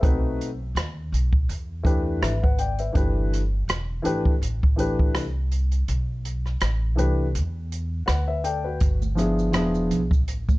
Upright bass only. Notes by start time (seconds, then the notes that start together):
0.03 B1
0.75 D#2
1.12 B1
1.49 E2
2.22 G#1
2.95 G1
3.68 E1
4.05 G#1
4.42 A1
5.15 C2
5.88 B1
6.62 A1
6.98 C2
7.35 E2
8.08 D2
8.81 G1
9.54 E1
9.91 B1
10.26 A1